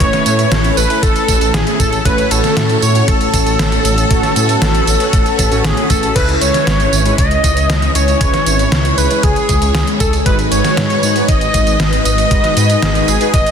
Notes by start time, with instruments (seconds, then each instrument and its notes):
Already playing: string machine A3 C#4 E4, fm electric piano C#5, analog synth lead C#5
0.00 detuned saw bass A1, analog polysynth A3 C#4 E4 B4, string machine A4, kick, closed hi-hat, tambourine
0.13 snare, closed hi-hat, tambourine
0.26 detuned saw bass A2, closed hi-hat, tambourine
0.39 closed hi-hat, tambourine
0.51 detuned saw bass A1, snare, closed hi-hat, tambourine
0.64 closed hi-hat, tambourine
0.77 detuned saw bass A1, analog synth lead B4, fm electric piano B4, tambourine
0.90 analog polysynth A3 C#4 E4 B4, closed hi-hat, tambourine
1.03 detuned saw bass A1, analog synth lead A4, fm electric piano A4, kick, closed hi-hat, tambourine
1.16 closed hi-hat, tambourine
1.28 detuned saw bass A1, kick, closed hi-hat, tambourine
1.41 detuned saw bass A1, closed hi-hat, tambourine
1.54 detuned saw bass A1, analog synth lead G#4, fm electric piano G#4, snare, closed hi-hat, tambourine
1.67 closed hi-hat, tambourine
1.80 detuned saw bass A1, analog synth lead A4, fm electric piano A4, kick, closed hi-hat, tambourine
1.93 closed hi-hat, tambourine
2.05 detuned saw bass A1, analog polysynth A3 C#4 F#4 C#5, string machine F#4 C#5, analog synth lead B4, fm electric piano B4, kick, closed hi-hat, tambourine
2.18 closed hi-hat, tambourine
2.31 detuned saw bass A1, analog synth lead A4, fm electric piano A4, closed hi-hat, tambourine
2.44 snare, closed hi-hat, tambourine
2.57 detuned saw bass A2, snare, closed hi-hat, tambourine
2.69 closed hi-hat, tambourine
2.82 detuned saw bass A2, fm electric piano C#5, analog synth lead C#5, tambourine
2.95 analog polysynth A3 C#4 F#4 C#5, closed hi-hat, tambourine
3.08 detuned saw bass A1, analog synth lead A4, fm electric piano A4, kick, closed hi-hat, tambourine
3.21 closed hi-hat, tambourine
3.34 detuned saw bass A1, kick, closed hi-hat, tambourine
3.46 detuned saw bass A1, closed hi-hat, tambourine
3.59 detuned saw bass A1, snare, closed hi-hat, tambourine
3.72 closed hi-hat, tambourine
3.85 detuned saw bass A1, closed hi-hat, tambourine
3.98 closed hi-hat, tambourine
4.10 detuned saw bass A1, analog polysynth A3 C#4 F#4 C#5, string machine B4, kick, closed hi-hat, tambourine
4.23 snare, closed hi-hat, tambourine
4.36 detuned saw bass A2, closed hi-hat, tambourine
4.49 closed hi-hat, tambourine
4.62 detuned saw bass A1, snare, closed hi-hat, tambourine
4.75 closed hi-hat, tambourine
4.87 detuned saw bass A1, closed hi-hat, tambourine
5.00 analog polysynth A3 C#4 F#4 C#5, closed hi-hat, tambourine
5.13 detuned saw bass A1, kick, closed hi-hat, tambourine
5.26 closed hi-hat, tambourine
5.39 detuned saw bass A1, kick, closed hi-hat, tambourine
5.51 detuned saw bass A1, analog polysynth A3 C#4 F#4 C#5, closed hi-hat, tambourine
5.64 detuned saw bass A1, analog synth lead G#4, fm electric piano G#4, snare, closed hi-hat, tambourine
5.77 closed hi-hat, tambourine
5.90 detuned saw bass A1, analog polysynth A3 C#4 F#4 C#5, analog synth lead A4, fm electric piano A4, kick, closed hi-hat, tambourine
6.03 closed hi-hat, tambourine
6.16 detuned saw bass C#2, analog polysynth G#3 C#4 E4 B4, string machine G#3 E4, fm electric piano B4, analog synth lead B4, kick, closed hi-hat, crash, tambourine
6.29 closed hi-hat, tambourine
6.41 detuned saw bass C#2, analog synth lead C#5, fm electric piano C#5, closed hi-hat, tambourine
6.54 snare, closed hi-hat, tambourine
6.67 detuned saw bass G#1, snare, closed hi-hat, tambourine
6.80 closed hi-hat, tambourine
6.92 detuned saw bass G#1, tambourine
7.05 analog polysynth G#3 C#4 E4 B4, closed hi-hat, tambourine
7.18 detuned saw bass C#2, fm electric piano D#5, analog synth lead D#5, kick, closed hi-hat, tambourine
7.31 closed hi-hat, tambourine
7.44 detuned saw bass C#2, kick, closed hi-hat, tambourine
7.57 detuned saw bass C#2, closed hi-hat, tambourine
7.70 snare, closed hi-hat, tambourine
7.82 closed hi-hat, tambourine
7.95 detuned saw bass C#2, fm electric piano C#5, analog synth lead C#5, closed hi-hat, tambourine
8.08 closed hi-hat, tambourine
8.21 detuned saw bass C#2, analog polysynth G#3 C#4 E4 B4, string machine C#5, kick, closed hi-hat, tambourine
8.34 snare, closed hi-hat, tambourine
8.46 detuned saw bass G#1, closed hi-hat, tambourine
8.59 closed hi-hat, tambourine
8.72 detuned saw bass C#2, snare, closed hi-hat, tambourine
8.85 closed hi-hat, tambourine
8.98 detuned saw bass C#2, fm electric piano B4, analog synth lead B4, tambourine
9.11 analog polysynth G#3 C#4 E4 B4, closed hi-hat, tambourine
9.23 detuned saw bass C#2, fm electric piano G#4, analog synth lead G#4, kick, closed hi-hat, tambourine
9.36 closed hi-hat, tambourine
9.49 detuned saw bass C#2, kick, closed hi-hat, tambourine
9.62 detuned saw bass C#2, closed hi-hat, tambourine
9.75 fm electric piano G#4, analog synth lead G#4, snare, closed hi-hat, tambourine
9.87 closed hi-hat, tambourine
10.00 detuned saw bass C#2, fm electric piano A4, analog synth lead A4, kick, closed hi-hat, tambourine
10.13 closed hi-hat, tambourine
10.26 detuned saw bass G#1, analog polysynth G#3 D#4 F#4 B4, string machine D#4 F#4 B4, fm electric piano B4, analog synth lead B4, kick, closed hi-hat, tambourine
10.39 closed hi-hat, tambourine
10.51 detuned saw bass G#1, fm electric piano C#5, analog synth lead C#5, closed hi-hat, tambourine
10.64 snare, closed hi-hat, tambourine
10.77 detuned saw bass G#2, snare, closed hi-hat, tambourine
10.90 closed hi-hat, tambourine
11.03 detuned saw bass G#2, tambourine
11.16 analog polysynth G#3 D#4 F#4 B4, closed hi-hat, tambourine
11.28 detuned saw bass G#1, fm electric piano D#5, analog synth lead D#5, kick, closed hi-hat, tambourine
11.41 closed hi-hat, tambourine
11.54 detuned saw bass G#1, kick, closed hi-hat, tambourine
11.67 detuned saw bass G#1, closed hi-hat, tambourine
11.80 snare, closed hi-hat, tambourine
11.93 closed hi-hat, tambourine
12.05 detuned saw bass G#1, fm electric piano D#5, analog synth lead D#5, closed hi-hat, tambourine
12.18 closed hi-hat, tambourine
12.31 detuned saw bass G#1, analog polysynth G#3 D#4 F#4 B4, string machine G#4, kick, closed hi-hat, tambourine
12.44 snare, closed hi-hat, tambourine
12.57 detuned saw bass G#2, closed hi-hat, tambourine
12.70 closed hi-hat, tambourine
12.82 detuned saw bass G#1, snare, closed hi-hat, tambourine
12.95 closed hi-hat, tambourine
13.08 detuned saw bass G#1, fm electric piano G#4, analog synth lead G#4, tambourine
13.21 analog polysynth G#3 D#4 F#4 B4, closed hi-hat, tambourine
13.34 detuned saw bass G#1, analog synth lead D#5, fm electric piano D#5, kick, closed hi-hat, tambourine
13.46 closed hi-hat, tambourine